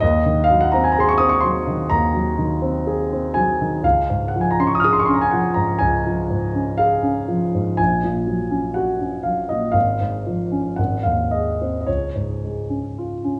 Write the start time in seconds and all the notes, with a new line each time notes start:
0.00 D#2 D#5
0.26 D#3
0.44 F5
0.50 F#3
0.61 F#5
0.72 C4 A#5
0.84 G#5
0.92 A#5
0.99 G#4 C6
1.09 C#6
1.18 C4 D#6
1.29 C#6
1.41 F#3 C6
1.67 D#3
1.90 D#2 A#5
2.13 F#3
2.38 D#3
2.62 C4
2.87 G#4
3.13 C4
3.34 F#3 G#5
3.61 D#3
3.83 C#2 F5
4.10 G#2
4.28 F#5
4.35 F3
4.41 G#5
4.51 A#5
4.59 C#4 C6
4.67 C#6
4.75 D#6
4.80 F6
4.84 G#4 D#6
4.93 C6
5.00 C#6
5.05 C#4 C6
5.14 A#5
5.21 G#5
5.31 F3 F#5
5.54 G#2 A#5
5.79 C#2 G#5
6.06 F3
6.30 G#2
6.55 C#4
6.78 G#4 F5
7.03 C#4
7.28 F3
7.55 G#2
7.77 A#1 G#5
8.04 A#2
8.26 F#3
8.51 C#4
8.74 F#4 F#5
9.01 C#4
9.23 F#3 F5
9.49 A#2 D#5
9.72 G#1 F5
10.01 G#2
10.26 F3
10.52 C#4
10.76 G#1 F#5
11.03 D#2 F5
11.31 G#3 D#5
11.61 C4
11.81 D#5
11.87 C#2 C#5
12.15 G#2
12.45 G#3
12.70 C#4
12.98 F4
13.24 C#4